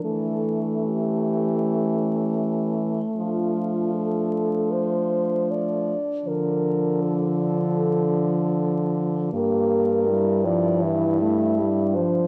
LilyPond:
<<
  \new Staff \with { instrumentName = "French horn" } { \time 4/4 \key d \minor \tempo 4 = 78 a'4 g'2~ g'8 r8 | f'4 a'4 c''4 d''4 | bes'4 a'2~ a'8 r8 | bes'4. d''8 e'4. c''8 | }
  \new Staff \with { instrumentName = "French horn" } { \time 4/4 \key d \minor d'4 cis'2. | d'1~ | d'1 | g'4 e'2 d'4 | }
  \new Staff \with { instrumentName = "French horn" } { \clef bass \time 4/4 \key d \minor a1~ | a2.~ a8 r8 | f1 | bes4 g8 f8 e8 a8 g8 f8 | }
  \new Staff \with { instrumentName = "French horn" } { \clef bass \time 4/4 \key d \minor e1 | f2.~ f8 r8 | d1 | g,1 | }
>>